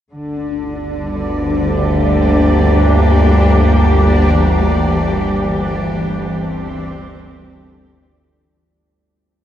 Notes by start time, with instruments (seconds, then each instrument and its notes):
0.10 synth drone G1 D2, cello section D3, synth texture D4 D5
0.96 cello section G3
1.66 cello section G4
2.01 cello section A#3
4.29 cello section E3
6.19 cello section C4